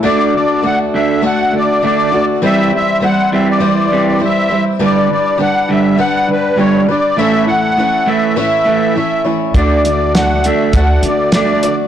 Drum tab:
HH |--------|--------|--------|--------|
SD |--------|--------|--------|--------|
BD |--------|--------|--------|--------|

HH |xxxxxxxx|
SD |--o---o-|
BD |o---o---|